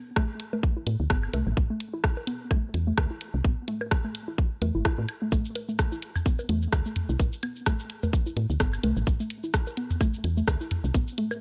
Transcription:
0.16 synth pluck A3, kick, cross-stick
0.40 closed hi-hat
0.53 synth pluck A3, low bongo
0.63 kick
0.77 synth pluck E4
0.87 fm bass A2, closed hi-hat
1.00 fm bass D2
1.10 fm bass G1, synth pluck B3, kick, cross-stick
1.23 claves
1.34 fm bass C2, synth pluck A3, closed hi-hat, low bongo
1.47 fm bass A1
1.57 fm bass A1, kick
1.70 synth pluck A3
1.80 closed hi-hat
1.94 synth pluck E4
2.04 kick, cross-stick
2.17 low bongo
2.27 synth pluck B3, closed hi-hat
2.51 synth pluck A3, kick, claves
2.74 fm bass E2, closed hi-hat
2.87 synth pluck A3
2.98 fm bass D2, kick, cross-stick, low bongo
3.11 synth pluck E4
3.21 closed hi-hat
3.34 fm bass C2
3.44 fm bass A1, synth pluck B3, kick
3.68 synth pluck A3, closed hi-hat
3.81 low bongo, claves
3.91 kick, cross-stick
4.04 synth pluck A3
4.15 closed hi-hat
4.28 synth pluck E4
4.38 kick
4.62 fm bass E2, synth pluck A3, closed hi-hat, low bongo
4.75 fm bass G1, synth pluck E4
4.85 synth pluck E4, kick, cross-stick
4.98 fm bass A2
5.09 closed hi-hat, claves
5.22 synth pluck A3
5.32 fm bass A1, synth pluck A3, kick, cabasa
5.45 cabasa
5.55 closed hi-hat, low bongo
5.69 synth pluck A3, cabasa
5.79 kick, cross-stick, cabasa
5.92 synth pluck E4, cabasa
6.02 closed hi-hat
6.16 mid tom, cabasa, claves
6.26 synth pluck B3, kick, cabasa
6.39 low bongo, cabasa
6.49 fm bass E2, synth pluck A3, closed hi-hat
6.62 cabasa
6.73 fm bass D2, kick, cross-stick, cabasa
6.86 synth pluck A3, cabasa
6.96 closed hi-hat, mid tom
7.09 fm bass C2, synth pluck E4, cabasa
7.19 fm bass A1, kick, low bongo, cabasa
7.33 cabasa
7.43 synth pluck B3, closed hi-hat, claves
7.56 cabasa
7.66 synth pluck A3, kick, cross-stick, cabasa
7.80 cabasa
7.90 closed hi-hat
8.03 synth pluck A3, mid tom, low bongo, cabasa
8.13 kick, cabasa
8.26 synth pluck E4, cabasa
8.37 fm bass A2, closed hi-hat
8.50 fm bass D2, cabasa
8.60 fm bass G1, synth pluck B3, kick, cross-stick, cabasa
8.73 cabasa, claves
8.83 fm bass C2, synth pluck A3, closed hi-hat, low bongo
8.97 fm bass A1, cabasa
9.07 fm bass A1, kick, cabasa
9.20 synth pluck A3, cabasa
9.30 closed hi-hat
9.44 synth pluck E4, cabasa
9.54 kick, cross-stick, cabasa
9.67 low bongo, cabasa
9.77 synth pluck B3, closed hi-hat
9.90 mid tom, cabasa
10.01 synth pluck A3, kick, cabasa, claves
10.14 cabasa
10.24 fm bass E2, closed hi-hat
10.37 synth pluck A3, cabasa
10.48 fm bass D2, kick, cross-stick, low bongo, cabasa
10.61 synth pluck E4, cabasa
10.71 closed hi-hat, mid tom
10.84 fm bass C2, cabasa
10.94 fm bass A1, synth pluck B3, kick, cabasa
11.08 cabasa
11.18 synth pluck A3, closed hi-hat
11.31 low bongo, cabasa, claves

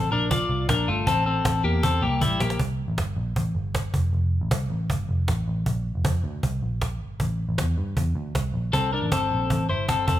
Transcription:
0.12 picked electric bass A#1, clean electric guitar D4 A#4
0.31 clean electric guitar F4 D5, cajon bass
0.49 picked electric bass C2
0.69 picked electric bass A#1, clean electric guitar D4 A#4, cajon bass, cajon slap
0.88 picked electric bass G1, clean electric guitar A3 F4
1.07 picked electric bass A1, clean electric guitar C4 A4, cajon bass
1.26 clean electric guitar C4 A4
1.45 picked electric bass A1, cajon bass, cajon slap
1.64 picked electric bass E2, clean electric guitar A#3 G4
1.83 clean electric guitar C4 A4, cajon bass
2.02 picked electric bass C2, clean electric guitar A#3 G4
2.21 picked electric bass A1, clean electric guitar G3 E4, cajon bass, cajon slap
2.40 picked electric bass A#1, clean electric guitar A#3 G4, cajon slap
2.50 cajon slap
2.59 picked electric bass C2, cajon bass
2.88 picked electric bass A1
2.98 picked electric bass G1, cajon bass, cajon slap
3.16 picked electric bass A#1
3.36 picked electric bass A1, cajon bass
3.55 picked electric bass G1
3.75 cajon bass, cajon slap
3.94 picked electric bass F1, cajon bass
4.13 picked electric bass F1, cajon slap
4.41 picked electric bass A1
4.51 picked electric bass C2, cajon bass, cajon slap
4.70 picked electric bass A1
4.90 picked electric bass G1, cajon bass
5.09 picked electric bass F1
5.28 picked electric bass A1, cajon bass, cajon slap
5.48 picked electric bass A1
5.66 picked electric bass A#1, cajon bass
5.95 picked electric bass F1
6.05 picked electric bass F2, cajon bass, cajon slap
6.24 picked electric bass D2
6.43 picked electric bass C2, cajon bass
6.62 picked electric bass A#1
6.81 cajon bass, cajon slap
7.01 picked electric bass G1
7.20 picked electric bass A1, cajon bass
7.49 picked electric bass A1
7.58 picked electric bass E2, cajon bass, cajon slap
7.78 picked electric bass G2
7.97 picked electric bass E2, cajon bass
8.15 picked electric bass D2
8.35 picked electric bass C2, cajon bass, cajon slap
8.54 picked electric bass A#1
8.73 picked electric bass C2, clean electric guitar C4 A4, cajon bass
8.93 clean electric guitar D4 A#4
9.02 picked electric bass A1
9.12 picked electric bass G1, clean electric guitar C4 A4, cajon bass, cajon slap
9.31 picked electric bass A#1
9.50 picked electric bass A1, cajon bass
9.69 picked electric bass G1, clean electric guitar E4 C5
9.89 clean electric guitar C4 A4, cajon bass, cajon slap
10.07 picked electric bass F1, clean electric guitar C4 A4, cajon bass

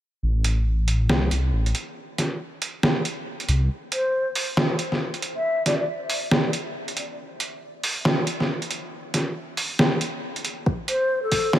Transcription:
0.23 detuned saw bass A1
0.44 closed hi-hat
0.88 closed hi-hat
1.09 detuned saw bass C2, snare
1.31 detuned saw bass C2, closed hi-hat
1.53 detuned saw bass A1
1.66 closed hi-hat
1.75 closed hi-hat
2.18 snare, closed hi-hat
2.62 closed hi-hat
2.83 snare
3.05 closed hi-hat
3.40 closed hi-hat
3.49 detuned saw bass C2, closed hi-hat
3.92 ney C5, closed hi-hat
4.35 open hi-hat
4.57 snare
4.79 closed hi-hat
4.92 snare
5.14 closed hi-hat
5.22 closed hi-hat
5.36 ney E5
5.66 ney D5, snare, closed hi-hat
5.80 ney D5
6.10 open hi-hat
6.31 snare
6.53 closed hi-hat
6.88 closed hi-hat
6.97 closed hi-hat
7.40 closed hi-hat
7.84 open hi-hat
8.05 snare
8.27 closed hi-hat
8.40 snare
8.62 closed hi-hat
8.71 closed hi-hat
9.14 snare, closed hi-hat
9.57 open hi-hat
9.79 snare
10.01 closed hi-hat
10.36 closed hi-hat
10.45 closed hi-hat
10.66 kick
10.88 ney C5, closed hi-hat
11.23 ney A4
11.32 kick, open hi-hat
11.53 snare

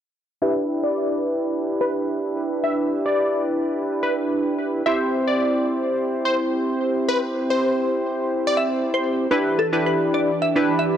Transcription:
0.42 analog polysynth D4 E4 G4 B4, digital synth lead E5
0.84 digital synth lead D5
1.81 digital synth lead B4
2.64 digital synth lead E5
3.06 digital synth lead D5
4.03 digital synth lead B4
4.86 analog polysynth C4 E4 G4 C5, digital synth lead E5
5.28 digital synth lead D5
6.25 digital synth lead C5
7.09 digital synth lead B4
7.50 digital synth lead C5
8.47 digital synth lead D5
8.57 synth pluck E5
8.94 synth pluck C5
9.31 string machine E3 D4 G4 D5, analog polysynth D4 E4 G4 B4, synth pluck B4
9.59 synth pluck A4
9.73 analog polysynth D4 E4 G4 B4
9.86 synth pluck B4
10.14 synth pluck D5
10.42 synth pluck E5
10.56 analog polysynth D4 E4 G4 B4
10.79 synth pluck E5

